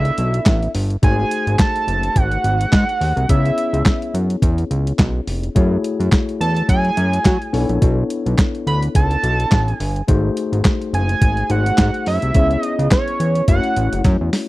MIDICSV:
0, 0, Header, 1, 5, 480
1, 0, Start_track
1, 0, Key_signature, 3, "minor"
1, 0, Tempo, 566038
1, 872, Time_signature, 4, 2, 24, 8
1, 12283, End_track
2, 0, Start_track
2, 0, Title_t, "Analog synth lead"
2, 0, Program_c, 0, 81
2, 0, Note_on_c, 0, 76, 97
2, 601, Note_off_c, 0, 76, 0
2, 880, Note_on_c, 0, 80, 115
2, 1323, Note_off_c, 0, 80, 0
2, 1356, Note_on_c, 0, 81, 105
2, 1836, Note_on_c, 0, 78, 114
2, 1849, Note_off_c, 0, 81, 0
2, 2794, Note_on_c, 0, 76, 102
2, 2807, Note_off_c, 0, 78, 0
2, 3513, Note_off_c, 0, 76, 0
2, 5433, Note_on_c, 0, 81, 113
2, 5655, Note_off_c, 0, 81, 0
2, 5676, Note_on_c, 0, 80, 118
2, 6600, Note_off_c, 0, 80, 0
2, 7355, Note_on_c, 0, 83, 104
2, 7462, Note_off_c, 0, 83, 0
2, 7597, Note_on_c, 0, 81, 125
2, 8207, Note_off_c, 0, 81, 0
2, 8207, Note_on_c, 0, 80, 125
2, 8520, Note_off_c, 0, 80, 0
2, 9280, Note_on_c, 0, 80, 116
2, 9761, Note_on_c, 0, 78, 114
2, 9774, Note_off_c, 0, 80, 0
2, 10236, Note_off_c, 0, 78, 0
2, 10240, Note_on_c, 0, 76, 123
2, 10706, Note_off_c, 0, 76, 0
2, 10706, Note_on_c, 0, 75, 123
2, 10922, Note_off_c, 0, 75, 0
2, 10956, Note_on_c, 0, 73, 88
2, 11400, Note_off_c, 0, 73, 0
2, 11434, Note_on_c, 0, 78, 101
2, 11879, Note_off_c, 0, 78, 0
2, 12283, End_track
3, 0, Start_track
3, 0, Title_t, "Tine electric piano"
3, 0, Program_c, 1, 4
3, 0, Note_on_c, 1, 59, 76
3, 0, Note_on_c, 1, 62, 70
3, 0, Note_on_c, 1, 64, 72
3, 0, Note_on_c, 1, 69, 71
3, 0, Note_on_c, 1, 74, 87
3, 594, Note_off_c, 1, 59, 0
3, 596, Note_off_c, 1, 62, 0
3, 598, Note_off_c, 1, 64, 0
3, 600, Note_off_c, 1, 69, 0
3, 601, Note_off_c, 1, 74, 0
3, 867, Note_on_c, 1, 57, 63
3, 871, Note_on_c, 1, 63, 57
3, 874, Note_on_c, 1, 66, 59
3, 876, Note_on_c, 1, 68, 60
3, 881, Note_on_c, 1, 72, 74
3, 2755, Note_off_c, 1, 57, 0
3, 2758, Note_off_c, 1, 63, 0
3, 2759, Note_off_c, 1, 66, 0
3, 2760, Note_off_c, 1, 68, 0
3, 2762, Note_off_c, 1, 72, 0
3, 2785, Note_on_c, 1, 59, 65
3, 2788, Note_on_c, 1, 61, 55
3, 2789, Note_on_c, 1, 64, 62
3, 2794, Note_on_c, 1, 68, 56
3, 2799, Note_on_c, 1, 73, 67
3, 4674, Note_off_c, 1, 59, 0
3, 4676, Note_off_c, 1, 61, 0
3, 4677, Note_off_c, 1, 64, 0
3, 4679, Note_off_c, 1, 68, 0
3, 4681, Note_off_c, 1, 73, 0
3, 4706, Note_on_c, 1, 57, 80
3, 4710, Note_on_c, 1, 64, 74
3, 4713, Note_on_c, 1, 66, 63
3, 4717, Note_on_c, 1, 68, 65
3, 4721, Note_on_c, 1, 73, 76
3, 6355, Note_off_c, 1, 57, 0
3, 6357, Note_off_c, 1, 64, 0
3, 6359, Note_off_c, 1, 66, 0
3, 6361, Note_off_c, 1, 68, 0
3, 6363, Note_off_c, 1, 73, 0
3, 6384, Note_on_c, 1, 59, 81
3, 6388, Note_on_c, 1, 62, 72
3, 6391, Note_on_c, 1, 64, 68
3, 6394, Note_on_c, 1, 69, 68
3, 6398, Note_on_c, 1, 73, 85
3, 8274, Note_off_c, 1, 59, 0
3, 8276, Note_off_c, 1, 62, 0
3, 8278, Note_off_c, 1, 64, 0
3, 8279, Note_off_c, 1, 69, 0
3, 8281, Note_off_c, 1, 73, 0
3, 8544, Note_on_c, 1, 57, 78
3, 8546, Note_on_c, 1, 63, 68
3, 8550, Note_on_c, 1, 66, 69
3, 8553, Note_on_c, 1, 68, 65
3, 8555, Note_on_c, 1, 72, 85
3, 9724, Note_off_c, 1, 57, 0
3, 9725, Note_off_c, 1, 63, 0
3, 9727, Note_off_c, 1, 66, 0
3, 9728, Note_off_c, 1, 68, 0
3, 9729, Note_off_c, 1, 72, 0
3, 9750, Note_on_c, 1, 63, 49
3, 9751, Note_on_c, 1, 57, 53
3, 9753, Note_on_c, 1, 66, 46
3, 9755, Note_on_c, 1, 68, 45
3, 9758, Note_on_c, 1, 72, 60
3, 10467, Note_on_c, 1, 59, 64
3, 10468, Note_off_c, 1, 68, 0
3, 10471, Note_off_c, 1, 57, 0
3, 10471, Note_off_c, 1, 63, 0
3, 10471, Note_on_c, 1, 61, 58
3, 10472, Note_off_c, 1, 66, 0
3, 10475, Note_off_c, 1, 72, 0
3, 10475, Note_on_c, 1, 64, 56
3, 10478, Note_on_c, 1, 68, 61
3, 10482, Note_on_c, 1, 73, 67
3, 11410, Note_off_c, 1, 59, 0
3, 11412, Note_off_c, 1, 61, 0
3, 11414, Note_off_c, 1, 64, 0
3, 11416, Note_off_c, 1, 68, 0
3, 11418, Note_off_c, 1, 73, 0
3, 11425, Note_on_c, 1, 57, 67
3, 11427, Note_on_c, 1, 61, 58
3, 11434, Note_on_c, 1, 64, 63
3, 11436, Note_on_c, 1, 66, 58
3, 11439, Note_on_c, 1, 73, 74
3, 12283, Note_off_c, 1, 57, 0
3, 12283, Note_off_c, 1, 61, 0
3, 12283, Note_off_c, 1, 64, 0
3, 12283, Note_off_c, 1, 66, 0
3, 12283, Note_off_c, 1, 73, 0
3, 12283, End_track
4, 0, Start_track
4, 0, Title_t, "Analog synth bass"
4, 0, Program_c, 2, 38
4, 0, Note_on_c, 2, 37, 102
4, 97, Note_off_c, 2, 37, 0
4, 155, Note_on_c, 2, 35, 105
4, 341, Note_off_c, 2, 35, 0
4, 391, Note_on_c, 2, 33, 101
4, 579, Note_off_c, 2, 33, 0
4, 633, Note_on_c, 2, 31, 102
4, 820, Note_off_c, 2, 31, 0
4, 872, Note_on_c, 2, 32, 123
4, 1059, Note_off_c, 2, 32, 0
4, 1247, Note_on_c, 2, 32, 96
4, 1329, Note_off_c, 2, 32, 0
4, 1591, Note_on_c, 2, 30, 97
4, 1779, Note_off_c, 2, 30, 0
4, 1830, Note_on_c, 2, 32, 106
4, 2018, Note_off_c, 2, 32, 0
4, 2071, Note_on_c, 2, 32, 104
4, 2258, Note_off_c, 2, 32, 0
4, 2310, Note_on_c, 2, 44, 103
4, 2415, Note_off_c, 2, 44, 0
4, 2551, Note_on_c, 2, 39, 93
4, 2656, Note_off_c, 2, 39, 0
4, 2684, Note_on_c, 2, 36, 96
4, 2767, Note_off_c, 2, 36, 0
4, 2792, Note_on_c, 2, 37, 120
4, 2979, Note_off_c, 2, 37, 0
4, 3165, Note_on_c, 2, 37, 103
4, 3248, Note_off_c, 2, 37, 0
4, 3513, Note_on_c, 2, 42, 87
4, 3700, Note_off_c, 2, 42, 0
4, 3750, Note_on_c, 2, 40, 113
4, 3938, Note_off_c, 2, 40, 0
4, 3992, Note_on_c, 2, 37, 99
4, 4179, Note_off_c, 2, 37, 0
4, 4230, Note_on_c, 2, 35, 102
4, 4418, Note_off_c, 2, 35, 0
4, 4473, Note_on_c, 2, 29, 95
4, 4660, Note_off_c, 2, 29, 0
4, 4713, Note_on_c, 2, 42, 110
4, 4900, Note_off_c, 2, 42, 0
4, 5087, Note_on_c, 2, 42, 99
4, 5169, Note_off_c, 2, 42, 0
4, 5432, Note_on_c, 2, 40, 87
4, 5619, Note_off_c, 2, 40, 0
4, 5671, Note_on_c, 2, 42, 101
4, 5858, Note_off_c, 2, 42, 0
4, 5913, Note_on_c, 2, 42, 107
4, 6099, Note_off_c, 2, 42, 0
4, 6151, Note_on_c, 2, 54, 104
4, 6256, Note_off_c, 2, 54, 0
4, 6388, Note_on_c, 2, 35, 94
4, 6494, Note_off_c, 2, 35, 0
4, 6522, Note_on_c, 2, 34, 95
4, 6606, Note_off_c, 2, 34, 0
4, 6631, Note_on_c, 2, 35, 119
4, 6818, Note_off_c, 2, 35, 0
4, 7006, Note_on_c, 2, 35, 102
4, 7088, Note_off_c, 2, 35, 0
4, 7350, Note_on_c, 2, 38, 93
4, 7538, Note_off_c, 2, 38, 0
4, 7589, Note_on_c, 2, 37, 104
4, 7778, Note_off_c, 2, 37, 0
4, 7831, Note_on_c, 2, 35, 106
4, 8018, Note_off_c, 2, 35, 0
4, 8072, Note_on_c, 2, 33, 107
4, 8259, Note_off_c, 2, 33, 0
4, 8313, Note_on_c, 2, 31, 102
4, 8499, Note_off_c, 2, 31, 0
4, 8553, Note_on_c, 2, 32, 127
4, 8739, Note_off_c, 2, 32, 0
4, 8925, Note_on_c, 2, 32, 100
4, 9008, Note_off_c, 2, 32, 0
4, 9272, Note_on_c, 2, 30, 106
4, 9459, Note_off_c, 2, 30, 0
4, 9511, Note_on_c, 2, 32, 90
4, 9699, Note_off_c, 2, 32, 0
4, 9750, Note_on_c, 2, 32, 109
4, 9938, Note_off_c, 2, 32, 0
4, 9992, Note_on_c, 2, 44, 112
4, 10097, Note_off_c, 2, 44, 0
4, 10233, Note_on_c, 2, 42, 95
4, 10337, Note_off_c, 2, 42, 0
4, 10368, Note_on_c, 2, 36, 98
4, 10449, Note_off_c, 2, 36, 0
4, 10472, Note_on_c, 2, 37, 114
4, 10659, Note_off_c, 2, 37, 0
4, 10845, Note_on_c, 2, 37, 102
4, 10928, Note_off_c, 2, 37, 0
4, 11193, Note_on_c, 2, 40, 87
4, 11380, Note_off_c, 2, 40, 0
4, 11431, Note_on_c, 2, 30, 117
4, 11536, Note_off_c, 2, 30, 0
4, 11674, Note_on_c, 2, 33, 106
4, 11778, Note_off_c, 2, 33, 0
4, 11809, Note_on_c, 2, 30, 98
4, 11890, Note_off_c, 2, 30, 0
4, 11911, Note_on_c, 2, 42, 120
4, 12016, Note_off_c, 2, 42, 0
4, 12050, Note_on_c, 2, 40, 96
4, 12131, Note_off_c, 2, 40, 0
4, 12283, End_track
5, 0, Start_track
5, 0, Title_t, "Drums"
5, 42, Note_on_c, 9, 42, 39
5, 127, Note_off_c, 9, 42, 0
5, 150, Note_on_c, 9, 42, 77
5, 235, Note_off_c, 9, 42, 0
5, 288, Note_on_c, 9, 42, 62
5, 373, Note_off_c, 9, 42, 0
5, 388, Note_on_c, 9, 39, 91
5, 388, Note_on_c, 9, 42, 81
5, 391, Note_on_c, 9, 36, 118
5, 392, Note_on_c, 9, 38, 117
5, 472, Note_off_c, 9, 39, 0
5, 473, Note_off_c, 9, 42, 0
5, 476, Note_off_c, 9, 36, 0
5, 477, Note_off_c, 9, 38, 0
5, 530, Note_on_c, 9, 42, 36
5, 615, Note_off_c, 9, 42, 0
5, 632, Note_on_c, 9, 46, 91
5, 717, Note_off_c, 9, 46, 0
5, 766, Note_on_c, 9, 42, 45
5, 851, Note_off_c, 9, 42, 0
5, 872, Note_on_c, 9, 36, 127
5, 872, Note_on_c, 9, 42, 98
5, 957, Note_off_c, 9, 36, 0
5, 957, Note_off_c, 9, 42, 0
5, 1113, Note_on_c, 9, 42, 84
5, 1198, Note_off_c, 9, 42, 0
5, 1249, Note_on_c, 9, 42, 53
5, 1334, Note_off_c, 9, 42, 0
5, 1348, Note_on_c, 9, 39, 96
5, 1349, Note_on_c, 9, 36, 126
5, 1351, Note_on_c, 9, 42, 104
5, 1352, Note_on_c, 9, 38, 124
5, 1432, Note_off_c, 9, 39, 0
5, 1434, Note_off_c, 9, 36, 0
5, 1435, Note_off_c, 9, 42, 0
5, 1437, Note_off_c, 9, 38, 0
5, 1490, Note_on_c, 9, 42, 42
5, 1574, Note_off_c, 9, 42, 0
5, 1595, Note_on_c, 9, 42, 75
5, 1680, Note_off_c, 9, 42, 0
5, 1724, Note_on_c, 9, 42, 59
5, 1809, Note_off_c, 9, 42, 0
5, 1830, Note_on_c, 9, 36, 103
5, 1831, Note_on_c, 9, 42, 93
5, 1915, Note_off_c, 9, 36, 0
5, 1916, Note_off_c, 9, 42, 0
5, 1963, Note_on_c, 9, 42, 39
5, 2048, Note_off_c, 9, 42, 0
5, 2072, Note_on_c, 9, 42, 75
5, 2157, Note_off_c, 9, 42, 0
5, 2211, Note_on_c, 9, 42, 64
5, 2295, Note_off_c, 9, 42, 0
5, 2311, Note_on_c, 9, 36, 105
5, 2311, Note_on_c, 9, 39, 89
5, 2311, Note_on_c, 9, 42, 87
5, 2315, Note_on_c, 9, 38, 108
5, 2395, Note_off_c, 9, 39, 0
5, 2396, Note_off_c, 9, 36, 0
5, 2396, Note_off_c, 9, 42, 0
5, 2400, Note_off_c, 9, 38, 0
5, 2451, Note_on_c, 9, 42, 39
5, 2536, Note_off_c, 9, 42, 0
5, 2556, Note_on_c, 9, 46, 82
5, 2641, Note_off_c, 9, 46, 0
5, 2689, Note_on_c, 9, 42, 45
5, 2773, Note_off_c, 9, 42, 0
5, 2792, Note_on_c, 9, 36, 122
5, 2792, Note_on_c, 9, 42, 112
5, 2877, Note_off_c, 9, 36, 0
5, 2877, Note_off_c, 9, 42, 0
5, 2929, Note_on_c, 9, 42, 39
5, 3014, Note_off_c, 9, 42, 0
5, 3034, Note_on_c, 9, 42, 89
5, 3119, Note_off_c, 9, 42, 0
5, 3170, Note_on_c, 9, 42, 53
5, 3255, Note_off_c, 9, 42, 0
5, 3269, Note_on_c, 9, 36, 108
5, 3269, Note_on_c, 9, 39, 97
5, 3271, Note_on_c, 9, 42, 97
5, 3273, Note_on_c, 9, 38, 127
5, 3353, Note_off_c, 9, 39, 0
5, 3354, Note_off_c, 9, 36, 0
5, 3356, Note_off_c, 9, 42, 0
5, 3358, Note_off_c, 9, 38, 0
5, 3410, Note_on_c, 9, 42, 38
5, 3495, Note_off_c, 9, 42, 0
5, 3516, Note_on_c, 9, 42, 80
5, 3601, Note_off_c, 9, 42, 0
5, 3647, Note_on_c, 9, 42, 64
5, 3732, Note_off_c, 9, 42, 0
5, 3750, Note_on_c, 9, 36, 120
5, 3753, Note_on_c, 9, 42, 110
5, 3835, Note_off_c, 9, 36, 0
5, 3838, Note_off_c, 9, 42, 0
5, 3885, Note_on_c, 9, 42, 39
5, 3969, Note_off_c, 9, 42, 0
5, 3993, Note_on_c, 9, 42, 77
5, 4078, Note_off_c, 9, 42, 0
5, 4131, Note_on_c, 9, 42, 65
5, 4216, Note_off_c, 9, 42, 0
5, 4230, Note_on_c, 9, 39, 90
5, 4231, Note_on_c, 9, 36, 116
5, 4231, Note_on_c, 9, 42, 85
5, 4234, Note_on_c, 9, 38, 104
5, 4315, Note_off_c, 9, 39, 0
5, 4316, Note_off_c, 9, 36, 0
5, 4316, Note_off_c, 9, 42, 0
5, 4319, Note_off_c, 9, 38, 0
5, 4473, Note_on_c, 9, 46, 80
5, 4558, Note_off_c, 9, 46, 0
5, 4609, Note_on_c, 9, 42, 49
5, 4694, Note_off_c, 9, 42, 0
5, 4713, Note_on_c, 9, 36, 127
5, 4714, Note_on_c, 9, 42, 100
5, 4798, Note_off_c, 9, 36, 0
5, 4799, Note_off_c, 9, 42, 0
5, 4955, Note_on_c, 9, 42, 88
5, 5040, Note_off_c, 9, 42, 0
5, 5092, Note_on_c, 9, 42, 51
5, 5176, Note_off_c, 9, 42, 0
5, 5190, Note_on_c, 9, 36, 112
5, 5190, Note_on_c, 9, 39, 98
5, 5193, Note_on_c, 9, 42, 103
5, 5194, Note_on_c, 9, 38, 127
5, 5274, Note_off_c, 9, 39, 0
5, 5275, Note_off_c, 9, 36, 0
5, 5277, Note_off_c, 9, 42, 0
5, 5279, Note_off_c, 9, 38, 0
5, 5332, Note_on_c, 9, 42, 34
5, 5417, Note_off_c, 9, 42, 0
5, 5437, Note_on_c, 9, 42, 81
5, 5522, Note_off_c, 9, 42, 0
5, 5567, Note_on_c, 9, 42, 56
5, 5652, Note_off_c, 9, 42, 0
5, 5671, Note_on_c, 9, 36, 105
5, 5673, Note_on_c, 9, 42, 103
5, 5756, Note_off_c, 9, 36, 0
5, 5758, Note_off_c, 9, 42, 0
5, 5805, Note_on_c, 9, 42, 33
5, 5890, Note_off_c, 9, 42, 0
5, 5912, Note_on_c, 9, 42, 82
5, 5997, Note_off_c, 9, 42, 0
5, 6050, Note_on_c, 9, 42, 64
5, 6134, Note_off_c, 9, 42, 0
5, 6149, Note_on_c, 9, 39, 86
5, 6149, Note_on_c, 9, 42, 79
5, 6151, Note_on_c, 9, 36, 120
5, 6153, Note_on_c, 9, 38, 110
5, 6233, Note_off_c, 9, 39, 0
5, 6234, Note_off_c, 9, 42, 0
5, 6236, Note_off_c, 9, 36, 0
5, 6238, Note_off_c, 9, 38, 0
5, 6290, Note_on_c, 9, 42, 38
5, 6374, Note_off_c, 9, 42, 0
5, 6393, Note_on_c, 9, 46, 83
5, 6478, Note_off_c, 9, 46, 0
5, 6524, Note_on_c, 9, 42, 47
5, 6609, Note_off_c, 9, 42, 0
5, 6631, Note_on_c, 9, 42, 100
5, 6632, Note_on_c, 9, 36, 126
5, 6716, Note_off_c, 9, 36, 0
5, 6716, Note_off_c, 9, 42, 0
5, 6871, Note_on_c, 9, 42, 78
5, 6956, Note_off_c, 9, 42, 0
5, 7008, Note_on_c, 9, 42, 55
5, 7093, Note_off_c, 9, 42, 0
5, 7108, Note_on_c, 9, 39, 93
5, 7109, Note_on_c, 9, 36, 117
5, 7111, Note_on_c, 9, 42, 104
5, 7112, Note_on_c, 9, 38, 118
5, 7192, Note_off_c, 9, 39, 0
5, 7194, Note_off_c, 9, 36, 0
5, 7195, Note_off_c, 9, 42, 0
5, 7197, Note_off_c, 9, 38, 0
5, 7248, Note_on_c, 9, 42, 35
5, 7333, Note_off_c, 9, 42, 0
5, 7354, Note_on_c, 9, 42, 73
5, 7439, Note_off_c, 9, 42, 0
5, 7484, Note_on_c, 9, 42, 62
5, 7568, Note_off_c, 9, 42, 0
5, 7590, Note_on_c, 9, 36, 112
5, 7591, Note_on_c, 9, 42, 99
5, 7675, Note_off_c, 9, 36, 0
5, 7675, Note_off_c, 9, 42, 0
5, 7723, Note_on_c, 9, 42, 37
5, 7808, Note_off_c, 9, 42, 0
5, 7832, Note_on_c, 9, 42, 75
5, 7917, Note_off_c, 9, 42, 0
5, 7969, Note_on_c, 9, 42, 62
5, 8054, Note_off_c, 9, 42, 0
5, 8068, Note_on_c, 9, 39, 95
5, 8069, Note_on_c, 9, 42, 87
5, 8071, Note_on_c, 9, 36, 115
5, 8073, Note_on_c, 9, 38, 118
5, 8153, Note_off_c, 9, 39, 0
5, 8154, Note_off_c, 9, 42, 0
5, 8155, Note_off_c, 9, 36, 0
5, 8158, Note_off_c, 9, 38, 0
5, 8209, Note_on_c, 9, 42, 39
5, 8294, Note_off_c, 9, 42, 0
5, 8313, Note_on_c, 9, 46, 78
5, 8398, Note_off_c, 9, 46, 0
5, 8448, Note_on_c, 9, 42, 45
5, 8532, Note_off_c, 9, 42, 0
5, 8551, Note_on_c, 9, 42, 111
5, 8552, Note_on_c, 9, 36, 127
5, 8635, Note_off_c, 9, 42, 0
5, 8637, Note_off_c, 9, 36, 0
5, 8793, Note_on_c, 9, 42, 86
5, 8878, Note_off_c, 9, 42, 0
5, 8929, Note_on_c, 9, 42, 56
5, 9013, Note_off_c, 9, 42, 0
5, 9028, Note_on_c, 9, 39, 106
5, 9030, Note_on_c, 9, 36, 120
5, 9031, Note_on_c, 9, 42, 97
5, 9032, Note_on_c, 9, 38, 122
5, 9112, Note_off_c, 9, 39, 0
5, 9114, Note_off_c, 9, 36, 0
5, 9115, Note_off_c, 9, 42, 0
5, 9117, Note_off_c, 9, 38, 0
5, 9172, Note_on_c, 9, 42, 40
5, 9256, Note_off_c, 9, 42, 0
5, 9277, Note_on_c, 9, 42, 75
5, 9362, Note_off_c, 9, 42, 0
5, 9406, Note_on_c, 9, 42, 59
5, 9491, Note_off_c, 9, 42, 0
5, 9511, Note_on_c, 9, 36, 113
5, 9511, Note_on_c, 9, 42, 108
5, 9596, Note_off_c, 9, 36, 0
5, 9596, Note_off_c, 9, 42, 0
5, 9642, Note_on_c, 9, 42, 36
5, 9726, Note_off_c, 9, 42, 0
5, 9750, Note_on_c, 9, 42, 81
5, 9834, Note_off_c, 9, 42, 0
5, 9890, Note_on_c, 9, 42, 64
5, 9974, Note_off_c, 9, 42, 0
5, 9987, Note_on_c, 9, 39, 90
5, 9988, Note_on_c, 9, 42, 84
5, 9991, Note_on_c, 9, 36, 100
5, 9992, Note_on_c, 9, 38, 119
5, 10072, Note_off_c, 9, 39, 0
5, 10073, Note_off_c, 9, 42, 0
5, 10076, Note_off_c, 9, 36, 0
5, 10076, Note_off_c, 9, 38, 0
5, 10126, Note_on_c, 9, 42, 39
5, 10211, Note_off_c, 9, 42, 0
5, 10230, Note_on_c, 9, 46, 85
5, 10315, Note_off_c, 9, 46, 0
5, 10364, Note_on_c, 9, 42, 47
5, 10449, Note_off_c, 9, 42, 0
5, 10468, Note_on_c, 9, 42, 102
5, 10471, Note_on_c, 9, 36, 112
5, 10553, Note_off_c, 9, 42, 0
5, 10556, Note_off_c, 9, 36, 0
5, 10606, Note_on_c, 9, 42, 37
5, 10690, Note_off_c, 9, 42, 0
5, 10712, Note_on_c, 9, 42, 77
5, 10797, Note_off_c, 9, 42, 0
5, 10849, Note_on_c, 9, 42, 53
5, 10934, Note_off_c, 9, 42, 0
5, 10948, Note_on_c, 9, 39, 97
5, 10950, Note_on_c, 9, 36, 115
5, 10951, Note_on_c, 9, 42, 102
5, 10953, Note_on_c, 9, 38, 118
5, 11033, Note_off_c, 9, 39, 0
5, 11035, Note_off_c, 9, 36, 0
5, 11036, Note_off_c, 9, 42, 0
5, 11037, Note_off_c, 9, 38, 0
5, 11088, Note_on_c, 9, 42, 40
5, 11173, Note_off_c, 9, 42, 0
5, 11195, Note_on_c, 9, 42, 78
5, 11279, Note_off_c, 9, 42, 0
5, 11324, Note_on_c, 9, 42, 61
5, 11409, Note_off_c, 9, 42, 0
5, 11430, Note_on_c, 9, 36, 104
5, 11430, Note_on_c, 9, 42, 104
5, 11515, Note_off_c, 9, 36, 0
5, 11515, Note_off_c, 9, 42, 0
5, 11562, Note_on_c, 9, 42, 38
5, 11647, Note_off_c, 9, 42, 0
5, 11672, Note_on_c, 9, 42, 79
5, 11757, Note_off_c, 9, 42, 0
5, 11809, Note_on_c, 9, 42, 65
5, 11894, Note_off_c, 9, 42, 0
5, 11909, Note_on_c, 9, 42, 85
5, 11911, Note_on_c, 9, 36, 113
5, 11912, Note_on_c, 9, 38, 61
5, 11994, Note_off_c, 9, 42, 0
5, 11996, Note_off_c, 9, 36, 0
5, 11997, Note_off_c, 9, 38, 0
5, 12151, Note_on_c, 9, 38, 94
5, 12152, Note_on_c, 9, 46, 79
5, 12236, Note_off_c, 9, 38, 0
5, 12237, Note_off_c, 9, 46, 0
5, 12283, End_track
0, 0, End_of_file